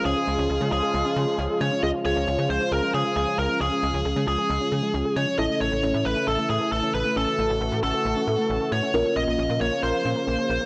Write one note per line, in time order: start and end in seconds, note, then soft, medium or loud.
0.00 8.90 C#3 medium
0.00 5.35 F3 medium
0.00 5.35 G#3 medium
0.00 1.79 C#4 medium
0.00 1.79 F4 medium
0.00 5.35 F4 medium
0.00 1.79 G#4 medium
0.05 0.15 C#2 loud
0.05 0.14 C#4 loud
0.05 0.71 G#4 medium
0.16 0.25 G#4 medium
0.27 0.37 C#2 loud
0.27 0.36 G#3 medium
0.39 0.48 C#2 loud
0.39 0.47 C#4 medium
0.50 0.59 C#2 medium
0.50 0.59 G#4 loud
0.61 0.70 C#3 loud
0.61 0.70 G#3 medium
0.72 0.81 C#2 loud
0.72 0.81 C#4 medium
0.72 1.64 G#4 loud
0.83 0.92 G#4 medium
0.94 1.04 C#2 loud
0.94 1.03 G#3 medium
1.05 1.14 C#4 medium
1.16 1.26 C#3 loud
1.16 1.25 G#4 medium
1.27 1.36 G#3 medium
1.39 1.48 C#2 loud
1.39 1.47 C#4 medium
1.50 1.59 G#4 medium
1.61 1.70 C#3 loud
1.61 1.70 G#3 medium
1.61 1.82 C#5 medium
1.72 1.81 C#4 medium
1.83 1.93 C#2 loud
1.83 1.92 G#3 loud
1.83 5.35 C#4 medium
1.83 5.35 F4 medium
1.83 5.35 G#4 medium
1.83 1.89 D#5 loud
1.94 2.03 C#4 medium
2.05 2.15 C#2 loud
2.05 2.14 G#4 medium
2.05 2.50 C#5 loud
2.16 2.26 C#2 loud
2.16 2.25 G#3 medium
2.27 2.37 C#2 loud
2.27 2.36 C#4 medium
2.39 2.48 C#3 loud
2.39 2.47 G#4 medium
2.50 2.59 C#2 loud
2.50 2.59 G#3 medium
2.50 2.73 C5 medium
2.61 2.70 C#4 medium
2.72 2.81 C#2 loud
2.72 2.81 G#4 loud
2.72 2.94 A#4 medium
2.83 2.92 G#3 medium
2.94 3.04 C#3 loud
2.94 3.03 C#4 medium
2.94 3.15 G#4 medium
3.05 3.14 G#4 medium
3.16 3.26 C#2 loud
3.16 3.25 G#3 medium
3.16 3.37 G#4 medium
3.27 3.36 C#4 medium
3.38 3.48 C#2 loud
3.38 3.47 G#4 medium
3.38 3.61 A#4 medium
3.50 3.59 G#3 medium
3.61 3.70 C#2 loud
3.61 3.70 C#4 loud
3.61 4.27 G#4 loud
3.72 3.81 G#4 medium
3.83 3.93 C#2 loud
3.83 3.92 G#3 medium
3.94 4.04 C#2 loud
3.94 4.03 C#4 medium
4.05 4.15 C#2 loud
4.05 4.14 G#4 loud
4.16 4.26 C#3 loud
4.16 4.25 G#3 medium
4.27 4.37 C#2 loud
4.27 4.36 C#4 medium
4.27 5.19 G#4 medium
4.39 4.47 G#4 medium
4.50 4.59 C#2 loud
4.50 4.59 G#3 medium
4.61 4.70 C#4 medium
4.72 4.81 C#3 loud
4.72 4.81 G#4 medium
4.83 4.92 G#3 medium
4.94 5.04 C#2 loud
4.94 5.03 C#4 medium
5.05 5.14 G#4 medium
5.16 5.26 C#3 loud
5.16 5.25 G#3 medium
5.16 5.38 C#5 medium
5.27 5.36 C#4 medium
5.38 5.48 A1 loud
5.38 8.91 E3 medium
5.38 5.47 A3 loud
5.38 8.91 A3 medium
5.38 8.90 C#4 medium
5.38 8.90 E4 medium
5.38 7.15 E4 medium
5.38 8.90 A4 medium
5.38 5.61 D#5 loud
5.50 5.59 C#4 medium
5.61 5.70 A1 loud
5.61 5.70 A4 medium
5.61 6.07 C#5 loud
5.72 5.82 A1 loud
5.72 5.81 A3 medium
5.83 5.93 A1 loud
5.83 5.92 C#4 medium
5.94 6.04 A2 loud
5.94 6.03 A4 medium
6.05 6.15 A1 loud
6.05 6.14 A3 medium
6.05 6.27 B4 medium
6.16 6.25 C#4 medium
6.27 6.37 A1 loud
6.27 6.36 A4 loud
6.27 6.49 A4 medium
6.39 6.47 A3 medium
6.50 6.59 A2 medium
6.50 6.59 C#4 medium
6.50 6.72 G#4 medium
6.61 6.70 A4 medium
6.72 6.81 A1 loud
6.72 6.81 A3 medium
6.72 6.94 A4 medium
6.83 6.92 C#4 medium
6.94 7.04 A1 loud
6.94 7.03 A4 medium
6.94 7.17 B4 medium
7.05 7.14 A3 medium
7.16 7.26 A1 loud
7.16 7.25 C#4 loud
7.16 8.92 F#4 medium
7.16 7.79 A4 medium
7.28 7.36 A4 medium
7.39 7.48 A1 loud
7.39 7.48 A3 medium
7.50 7.59 A1 loud
7.50 7.59 C#4 medium
7.61 7.70 A1 loud
7.61 7.70 A4 medium
7.72 7.82 A2 loud
7.72 7.81 A3 medium
7.83 7.93 A1 loud
7.83 7.92 C#4 medium
7.83 8.75 A4 medium
7.94 8.03 A4 medium
8.05 8.15 A1 loud
8.05 8.14 A3 medium
8.16 8.25 C#4 medium
8.27 8.37 A2 loud
8.27 8.36 A4 medium
8.38 8.47 A3 medium
8.49 8.59 A1 loud
8.49 8.58 C#4 medium
8.61 8.70 A4 medium
8.72 8.81 A2 loud
8.72 8.81 A3 medium
8.72 9.16 C#5 loud
8.83 8.92 C#4 medium
8.94 9.04 A#1 loud
8.94 10.66 C#3 medium
8.94 10.66 F3 medium
8.94 10.66 A#3 medium
8.94 9.03 A#3 loud
8.94 10.66 C#4 medium
8.94 10.66 F4 medium
8.94 10.66 A#4 medium
9.05 9.14 C#4 medium
9.16 9.26 A#1 loud
9.16 9.25 A#4 medium
9.16 9.61 D#5 loud
9.27 9.37 A#1 medium
9.27 9.36 A#3 medium
9.38 9.48 A#1 loud
9.38 9.48 C#4 medium
9.50 9.59 A#2 loud
9.50 9.59 A#4 medium
9.61 9.70 A#1 loud
9.61 9.70 A#3 medium
9.61 9.83 C#5 medium
9.72 9.81 C#4 medium
9.83 9.93 A#1 loud
9.83 9.92 A#4 loud
9.83 10.66 C5 medium
9.94 10.03 A#3 medium
10.05 10.15 A#2 loud
10.05 10.14 C#4 medium
10.16 10.25 A#4 medium
10.27 10.37 A#1 loud
10.27 10.36 A#3 medium
10.38 10.47 C#4 medium
10.50 10.59 A#1 loud
10.50 10.59 A#4 medium
10.61 10.66 A#3 medium